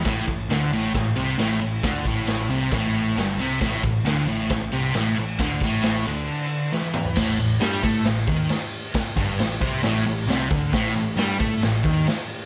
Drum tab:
CC |----------------|----------------|----------------|----------------|
RD |x-x-x-x-x-x-x-x-|x-x-x-x-x-x-x-x-|x-x-x-x-x-x-x-x-|x-x-x-x---------|
SD |o---o---o---o---|o---o---o---o---|o---o---o---o---|o---o-------o---|
T2 |----------------|----------------|----------------|--------------o-|
FT |----------------|----------------|----------------|---------------o|
BD |o-o-----o-------|o-o-----o-------|o-o-----o-------|o-o-------------|

CC |x---x---x---x---|x---x---x---x---|x---x---x---x---|
RD |----------------|----------------|----------------|
SD |o---o---o---o---|o---o---o---o---|o---o---o---o---|
T2 |----------------|----------------|----------------|
FT |----------------|----------------|----------------|
BD |o-----o---o-----|o-o---o-------o-|o-----o---o-----|